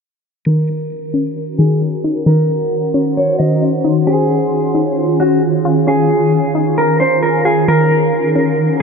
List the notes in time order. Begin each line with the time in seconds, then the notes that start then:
0.46 D#3 C#4 F#4 A#4
1.14 C#4
1.58 D#3 G#4
2.04 D#4
2.26 D#3 A#4 C5
2.94 C#4
3.17 C#5
3.39 D#3 D#5
3.85 D#4
4.07 C#4 F4 G#4
4.75 D#4
5.20 C#4 F#4
5.65 F4
5.87 C#4 G#4
6.55 D#4
6.78 A#4
7.00 C#4 C5
7.23 A#4
7.45 F4 G#4
7.68 D#3 C#4 F#4 A#4
8.35 C#4